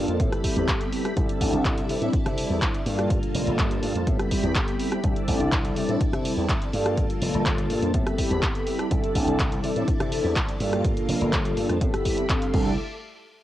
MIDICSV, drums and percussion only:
0, 0, Header, 1, 2, 480
1, 0, Start_track
1, 0, Tempo, 483871
1, 1159, Time_signature, 4, 2, 24, 8
1, 13326, End_track
2, 0, Start_track
2, 0, Title_t, "Drums"
2, 82, Note_on_c, 9, 42, 36
2, 182, Note_off_c, 9, 42, 0
2, 198, Note_on_c, 9, 36, 127
2, 198, Note_on_c, 9, 42, 82
2, 297, Note_off_c, 9, 36, 0
2, 297, Note_off_c, 9, 42, 0
2, 323, Note_on_c, 9, 37, 79
2, 323, Note_on_c, 9, 42, 54
2, 422, Note_off_c, 9, 37, 0
2, 422, Note_off_c, 9, 42, 0
2, 437, Note_on_c, 9, 46, 112
2, 438, Note_on_c, 9, 36, 64
2, 537, Note_off_c, 9, 36, 0
2, 537, Note_off_c, 9, 46, 0
2, 562, Note_on_c, 9, 42, 38
2, 661, Note_off_c, 9, 42, 0
2, 678, Note_on_c, 9, 36, 123
2, 678, Note_on_c, 9, 42, 84
2, 679, Note_on_c, 9, 39, 127
2, 777, Note_off_c, 9, 36, 0
2, 778, Note_off_c, 9, 39, 0
2, 778, Note_off_c, 9, 42, 0
2, 801, Note_on_c, 9, 42, 53
2, 901, Note_off_c, 9, 42, 0
2, 918, Note_on_c, 9, 46, 99
2, 1017, Note_off_c, 9, 46, 0
2, 1042, Note_on_c, 9, 37, 77
2, 1042, Note_on_c, 9, 42, 38
2, 1141, Note_off_c, 9, 37, 0
2, 1141, Note_off_c, 9, 42, 0
2, 1157, Note_on_c, 9, 36, 127
2, 1158, Note_on_c, 9, 42, 76
2, 1257, Note_off_c, 9, 36, 0
2, 1257, Note_off_c, 9, 42, 0
2, 1282, Note_on_c, 9, 42, 53
2, 1381, Note_off_c, 9, 42, 0
2, 1397, Note_on_c, 9, 36, 67
2, 1398, Note_on_c, 9, 46, 115
2, 1496, Note_off_c, 9, 36, 0
2, 1498, Note_off_c, 9, 46, 0
2, 1637, Note_on_c, 9, 36, 127
2, 1639, Note_on_c, 9, 39, 124
2, 1639, Note_on_c, 9, 42, 82
2, 1737, Note_off_c, 9, 36, 0
2, 1738, Note_off_c, 9, 39, 0
2, 1738, Note_off_c, 9, 42, 0
2, 1763, Note_on_c, 9, 42, 52
2, 1862, Note_off_c, 9, 42, 0
2, 1879, Note_on_c, 9, 46, 98
2, 1978, Note_off_c, 9, 46, 0
2, 2003, Note_on_c, 9, 42, 37
2, 2102, Note_off_c, 9, 42, 0
2, 2118, Note_on_c, 9, 36, 123
2, 2118, Note_on_c, 9, 42, 80
2, 2217, Note_off_c, 9, 36, 0
2, 2217, Note_off_c, 9, 42, 0
2, 2242, Note_on_c, 9, 37, 77
2, 2242, Note_on_c, 9, 42, 54
2, 2342, Note_off_c, 9, 37, 0
2, 2342, Note_off_c, 9, 42, 0
2, 2358, Note_on_c, 9, 46, 113
2, 2457, Note_off_c, 9, 46, 0
2, 2598, Note_on_c, 9, 36, 127
2, 2599, Note_on_c, 9, 39, 127
2, 2599, Note_on_c, 9, 42, 79
2, 2697, Note_off_c, 9, 36, 0
2, 2698, Note_off_c, 9, 39, 0
2, 2698, Note_off_c, 9, 42, 0
2, 2723, Note_on_c, 9, 42, 51
2, 2822, Note_off_c, 9, 42, 0
2, 2838, Note_on_c, 9, 46, 99
2, 2938, Note_off_c, 9, 46, 0
2, 2963, Note_on_c, 9, 37, 77
2, 2963, Note_on_c, 9, 42, 37
2, 3062, Note_off_c, 9, 37, 0
2, 3062, Note_off_c, 9, 42, 0
2, 3078, Note_on_c, 9, 36, 122
2, 3079, Note_on_c, 9, 42, 75
2, 3177, Note_off_c, 9, 36, 0
2, 3178, Note_off_c, 9, 42, 0
2, 3203, Note_on_c, 9, 42, 53
2, 3303, Note_off_c, 9, 42, 0
2, 3319, Note_on_c, 9, 46, 114
2, 3418, Note_off_c, 9, 46, 0
2, 3443, Note_on_c, 9, 42, 37
2, 3543, Note_off_c, 9, 42, 0
2, 3558, Note_on_c, 9, 36, 127
2, 3558, Note_on_c, 9, 42, 76
2, 3559, Note_on_c, 9, 39, 122
2, 3657, Note_off_c, 9, 36, 0
2, 3658, Note_off_c, 9, 39, 0
2, 3658, Note_off_c, 9, 42, 0
2, 3680, Note_on_c, 9, 42, 52
2, 3779, Note_off_c, 9, 42, 0
2, 3796, Note_on_c, 9, 46, 96
2, 3896, Note_off_c, 9, 46, 0
2, 3923, Note_on_c, 9, 42, 36
2, 4022, Note_off_c, 9, 42, 0
2, 4038, Note_on_c, 9, 36, 121
2, 4038, Note_on_c, 9, 42, 77
2, 4137, Note_off_c, 9, 36, 0
2, 4138, Note_off_c, 9, 42, 0
2, 4161, Note_on_c, 9, 37, 81
2, 4161, Note_on_c, 9, 42, 51
2, 4260, Note_off_c, 9, 37, 0
2, 4260, Note_off_c, 9, 42, 0
2, 4278, Note_on_c, 9, 36, 63
2, 4278, Note_on_c, 9, 46, 108
2, 4377, Note_off_c, 9, 36, 0
2, 4377, Note_off_c, 9, 46, 0
2, 4401, Note_on_c, 9, 42, 37
2, 4500, Note_off_c, 9, 42, 0
2, 4517, Note_on_c, 9, 39, 119
2, 4517, Note_on_c, 9, 42, 78
2, 4518, Note_on_c, 9, 36, 123
2, 4616, Note_off_c, 9, 39, 0
2, 4616, Note_off_c, 9, 42, 0
2, 4617, Note_off_c, 9, 36, 0
2, 4641, Note_on_c, 9, 42, 51
2, 4740, Note_off_c, 9, 42, 0
2, 4757, Note_on_c, 9, 46, 98
2, 4856, Note_off_c, 9, 46, 0
2, 4880, Note_on_c, 9, 37, 78
2, 4880, Note_on_c, 9, 42, 36
2, 4979, Note_off_c, 9, 37, 0
2, 4979, Note_off_c, 9, 42, 0
2, 4996, Note_on_c, 9, 42, 77
2, 4998, Note_on_c, 9, 36, 120
2, 5095, Note_off_c, 9, 42, 0
2, 5097, Note_off_c, 9, 36, 0
2, 5121, Note_on_c, 9, 42, 52
2, 5221, Note_off_c, 9, 42, 0
2, 5236, Note_on_c, 9, 46, 110
2, 5238, Note_on_c, 9, 36, 63
2, 5336, Note_off_c, 9, 46, 0
2, 5337, Note_off_c, 9, 36, 0
2, 5360, Note_on_c, 9, 42, 37
2, 5459, Note_off_c, 9, 42, 0
2, 5477, Note_on_c, 9, 39, 118
2, 5477, Note_on_c, 9, 42, 79
2, 5478, Note_on_c, 9, 36, 122
2, 5576, Note_off_c, 9, 42, 0
2, 5577, Note_off_c, 9, 36, 0
2, 5577, Note_off_c, 9, 39, 0
2, 5601, Note_on_c, 9, 42, 50
2, 5701, Note_off_c, 9, 42, 0
2, 5717, Note_on_c, 9, 46, 93
2, 5816, Note_off_c, 9, 46, 0
2, 5841, Note_on_c, 9, 42, 36
2, 5940, Note_off_c, 9, 42, 0
2, 5958, Note_on_c, 9, 36, 120
2, 5959, Note_on_c, 9, 42, 81
2, 6057, Note_off_c, 9, 36, 0
2, 6058, Note_off_c, 9, 42, 0
2, 6083, Note_on_c, 9, 37, 83
2, 6083, Note_on_c, 9, 42, 53
2, 6183, Note_off_c, 9, 37, 0
2, 6183, Note_off_c, 9, 42, 0
2, 6200, Note_on_c, 9, 46, 107
2, 6299, Note_off_c, 9, 46, 0
2, 6438, Note_on_c, 9, 36, 121
2, 6440, Note_on_c, 9, 39, 118
2, 6440, Note_on_c, 9, 42, 80
2, 6537, Note_off_c, 9, 36, 0
2, 6539, Note_off_c, 9, 42, 0
2, 6540, Note_off_c, 9, 39, 0
2, 6563, Note_on_c, 9, 42, 51
2, 6663, Note_off_c, 9, 42, 0
2, 6679, Note_on_c, 9, 46, 94
2, 6778, Note_off_c, 9, 46, 0
2, 6802, Note_on_c, 9, 37, 81
2, 6802, Note_on_c, 9, 42, 36
2, 6902, Note_off_c, 9, 37, 0
2, 6902, Note_off_c, 9, 42, 0
2, 6918, Note_on_c, 9, 36, 113
2, 6918, Note_on_c, 9, 42, 78
2, 7017, Note_off_c, 9, 42, 0
2, 7018, Note_off_c, 9, 36, 0
2, 7042, Note_on_c, 9, 42, 54
2, 7141, Note_off_c, 9, 42, 0
2, 7159, Note_on_c, 9, 46, 107
2, 7258, Note_off_c, 9, 46, 0
2, 7283, Note_on_c, 9, 42, 38
2, 7382, Note_off_c, 9, 42, 0
2, 7398, Note_on_c, 9, 42, 82
2, 7399, Note_on_c, 9, 36, 118
2, 7399, Note_on_c, 9, 39, 120
2, 7497, Note_off_c, 9, 42, 0
2, 7498, Note_off_c, 9, 36, 0
2, 7498, Note_off_c, 9, 39, 0
2, 7523, Note_on_c, 9, 42, 52
2, 7622, Note_off_c, 9, 42, 0
2, 7639, Note_on_c, 9, 46, 88
2, 7738, Note_off_c, 9, 46, 0
2, 7762, Note_on_c, 9, 42, 37
2, 7862, Note_off_c, 9, 42, 0
2, 7878, Note_on_c, 9, 42, 81
2, 7879, Note_on_c, 9, 36, 115
2, 7977, Note_off_c, 9, 42, 0
2, 7978, Note_off_c, 9, 36, 0
2, 8002, Note_on_c, 9, 37, 86
2, 8002, Note_on_c, 9, 42, 53
2, 8101, Note_off_c, 9, 37, 0
2, 8101, Note_off_c, 9, 42, 0
2, 8119, Note_on_c, 9, 36, 61
2, 8119, Note_on_c, 9, 46, 104
2, 8218, Note_off_c, 9, 36, 0
2, 8218, Note_off_c, 9, 46, 0
2, 8244, Note_on_c, 9, 42, 38
2, 8343, Note_off_c, 9, 42, 0
2, 8358, Note_on_c, 9, 42, 82
2, 8359, Note_on_c, 9, 36, 116
2, 8359, Note_on_c, 9, 39, 117
2, 8458, Note_off_c, 9, 36, 0
2, 8458, Note_off_c, 9, 39, 0
2, 8458, Note_off_c, 9, 42, 0
2, 8483, Note_on_c, 9, 42, 53
2, 8582, Note_off_c, 9, 42, 0
2, 8598, Note_on_c, 9, 46, 93
2, 8697, Note_off_c, 9, 46, 0
2, 8721, Note_on_c, 9, 37, 85
2, 8721, Note_on_c, 9, 42, 38
2, 8820, Note_off_c, 9, 37, 0
2, 8820, Note_off_c, 9, 42, 0
2, 8839, Note_on_c, 9, 36, 114
2, 8839, Note_on_c, 9, 42, 82
2, 8938, Note_off_c, 9, 36, 0
2, 8938, Note_off_c, 9, 42, 0
2, 8963, Note_on_c, 9, 42, 57
2, 9063, Note_off_c, 9, 42, 0
2, 9078, Note_on_c, 9, 46, 105
2, 9079, Note_on_c, 9, 36, 59
2, 9177, Note_off_c, 9, 46, 0
2, 9178, Note_off_c, 9, 36, 0
2, 9203, Note_on_c, 9, 42, 41
2, 9302, Note_off_c, 9, 42, 0
2, 9318, Note_on_c, 9, 42, 85
2, 9319, Note_on_c, 9, 36, 118
2, 9319, Note_on_c, 9, 39, 118
2, 9417, Note_off_c, 9, 42, 0
2, 9418, Note_off_c, 9, 36, 0
2, 9418, Note_off_c, 9, 39, 0
2, 9444, Note_on_c, 9, 42, 54
2, 9543, Note_off_c, 9, 42, 0
2, 9559, Note_on_c, 9, 46, 90
2, 9659, Note_off_c, 9, 46, 0
2, 9683, Note_on_c, 9, 42, 39
2, 9782, Note_off_c, 9, 42, 0
2, 9799, Note_on_c, 9, 36, 119
2, 9799, Note_on_c, 9, 42, 84
2, 9898, Note_off_c, 9, 36, 0
2, 9898, Note_off_c, 9, 42, 0
2, 9923, Note_on_c, 9, 37, 87
2, 9923, Note_on_c, 9, 42, 56
2, 10022, Note_off_c, 9, 37, 0
2, 10022, Note_off_c, 9, 42, 0
2, 10039, Note_on_c, 9, 46, 101
2, 10138, Note_off_c, 9, 46, 0
2, 10279, Note_on_c, 9, 36, 113
2, 10279, Note_on_c, 9, 39, 120
2, 10279, Note_on_c, 9, 42, 83
2, 10378, Note_off_c, 9, 36, 0
2, 10378, Note_off_c, 9, 42, 0
2, 10379, Note_off_c, 9, 39, 0
2, 10403, Note_on_c, 9, 42, 57
2, 10502, Note_off_c, 9, 42, 0
2, 10519, Note_on_c, 9, 46, 91
2, 10618, Note_off_c, 9, 46, 0
2, 10644, Note_on_c, 9, 37, 86
2, 10644, Note_on_c, 9, 42, 38
2, 10743, Note_off_c, 9, 37, 0
2, 10743, Note_off_c, 9, 42, 0
2, 10759, Note_on_c, 9, 36, 113
2, 10759, Note_on_c, 9, 42, 86
2, 10858, Note_off_c, 9, 36, 0
2, 10859, Note_off_c, 9, 42, 0
2, 10882, Note_on_c, 9, 42, 57
2, 10982, Note_off_c, 9, 42, 0
2, 10999, Note_on_c, 9, 46, 108
2, 11098, Note_off_c, 9, 46, 0
2, 11123, Note_on_c, 9, 42, 39
2, 11222, Note_off_c, 9, 42, 0
2, 11239, Note_on_c, 9, 36, 116
2, 11239, Note_on_c, 9, 39, 123
2, 11239, Note_on_c, 9, 42, 88
2, 11338, Note_off_c, 9, 36, 0
2, 11338, Note_off_c, 9, 42, 0
2, 11339, Note_off_c, 9, 39, 0
2, 11362, Note_on_c, 9, 42, 56
2, 11461, Note_off_c, 9, 42, 0
2, 11479, Note_on_c, 9, 46, 89
2, 11578, Note_off_c, 9, 46, 0
2, 11602, Note_on_c, 9, 37, 63
2, 11602, Note_on_c, 9, 42, 39
2, 11701, Note_off_c, 9, 37, 0
2, 11701, Note_off_c, 9, 42, 0
2, 11719, Note_on_c, 9, 36, 118
2, 11719, Note_on_c, 9, 42, 87
2, 11818, Note_off_c, 9, 36, 0
2, 11818, Note_off_c, 9, 42, 0
2, 11843, Note_on_c, 9, 37, 86
2, 11843, Note_on_c, 9, 42, 58
2, 11942, Note_off_c, 9, 37, 0
2, 11942, Note_off_c, 9, 42, 0
2, 11958, Note_on_c, 9, 46, 102
2, 11959, Note_on_c, 9, 36, 61
2, 12057, Note_off_c, 9, 46, 0
2, 12058, Note_off_c, 9, 36, 0
2, 12081, Note_on_c, 9, 42, 41
2, 12181, Note_off_c, 9, 42, 0
2, 12197, Note_on_c, 9, 42, 86
2, 12198, Note_on_c, 9, 39, 127
2, 12199, Note_on_c, 9, 36, 116
2, 12296, Note_off_c, 9, 42, 0
2, 12297, Note_off_c, 9, 39, 0
2, 12298, Note_off_c, 9, 36, 0
2, 12321, Note_on_c, 9, 42, 58
2, 12420, Note_off_c, 9, 42, 0
2, 12437, Note_on_c, 9, 49, 89
2, 12438, Note_on_c, 9, 36, 114
2, 12536, Note_off_c, 9, 49, 0
2, 12537, Note_off_c, 9, 36, 0
2, 13326, End_track
0, 0, End_of_file